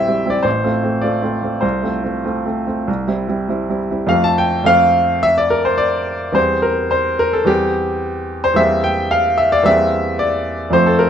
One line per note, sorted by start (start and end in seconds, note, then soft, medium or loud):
0.00 0.07 G3 soft
0.00 0.08 C4 soft
0.00 0.08 E4 soft
0.00 0.30 E5 medium
0.00 0.48 G5 medium
0.07 0.24 G3 soft
0.07 0.24 C4 soft
0.07 0.25 E4 soft
0.25 0.43 G3 soft
0.25 0.43 C4 soft
0.25 0.43 E4 soft
0.30 0.45 D5 medium
0.43 0.63 A1 soft
0.43 1.02 C5 medium
0.64 0.81 A3 soft
0.64 0.82 C4 soft
0.64 0.82 F4 soft
0.83 1.01 A3 soft
0.83 1.01 C4 soft
0.83 1.01 F4 soft
1.01 1.21 A3 soft
1.01 1.21 C4 soft
1.01 1.21 F4 soft
1.01 1.62 D5 medium
1.22 1.40 A3 soft
1.22 1.41 C4 soft
1.22 1.41 F4 soft
1.42 1.61 A3 soft
1.42 1.61 C4 soft
1.42 1.61 F4 soft
1.61 1.83 C2 soft
1.61 3.78 C5 medium
1.82 2.02 A3 soft
1.82 2.02 C4 soft
1.82 2.02 F4 soft
2.04 2.23 A3 soft
2.04 2.23 C4 soft
2.04 2.23 F4 soft
2.25 2.44 A3 soft
2.25 2.44 C4 soft
2.25 2.44 F4 soft
2.45 2.65 A3 soft
2.45 2.65 C4 soft
2.45 2.65 F4 soft
2.67 2.85 A3 soft
2.67 2.85 C4 soft
2.67 2.86 F4 soft
2.88 3.07 C2 soft
3.07 3.26 G3 soft
3.07 3.26 C4 soft
3.07 3.26 E4 soft
3.28 3.46 G3 soft
3.28 3.47 C4 soft
3.28 3.47 E4 soft
3.49 3.67 G3 soft
3.49 3.68 C4 soft
3.49 3.68 E4 soft
3.69 3.88 G3 soft
3.69 3.88 C4 soft
3.69 3.89 E4 soft
3.90 4.08 G3 soft
3.90 4.07 C4 soft
3.90 4.09 E4 soft
4.07 4.62 F2 soft
4.07 4.63 A3 soft
4.07 4.64 C4 soft
4.07 4.65 F4 soft
4.07 4.24 F5 medium
4.24 4.39 A5 medium
4.38 4.67 G5 medium
4.64 6.31 F2 medium
4.64 6.31 A3 soft
4.64 6.32 C4 soft
4.64 6.32 F4 soft
4.64 5.24 F5 medium
5.23 5.38 E5 medium
5.38 5.52 D5 medium
5.50 5.66 A#4 medium
5.65 5.80 C5 medium
5.78 6.35 D5 medium
6.32 7.43 E2 soft
6.32 7.43 G3 soft
6.32 7.44 C4 soft
6.32 6.64 C5 medium
6.62 6.92 A#4 medium
6.91 7.20 C5 medium
7.19 7.34 A#4 medium
7.33 7.48 A4 medium
7.45 8.52 E2 medium
7.45 8.53 G3 soft
7.45 8.54 C4 soft
7.45 8.44 G4 medium
8.44 8.58 C5 medium
8.54 9.61 E2 soft
8.54 9.62 G3 soft
8.54 9.62 A#3 soft
8.54 9.63 C4 soft
8.54 8.84 E5 medium
8.84 9.12 G5 medium
9.11 9.39 F5 medium
9.38 9.52 E5 medium
9.52 9.66 D5 medium
9.63 10.69 E2 medium
9.63 10.70 G3 soft
9.63 10.70 A#3 soft
9.63 10.71 C4 soft
9.63 10.20 E5 medium
10.19 10.73 D5 medium
10.70 11.10 F2 soft
10.70 11.10 F3 soft
10.70 11.10 A3 soft
10.70 11.10 C4 soft
10.70 10.87 C5 medium
10.86 11.00 A4 medium
10.99 11.10 A#4 medium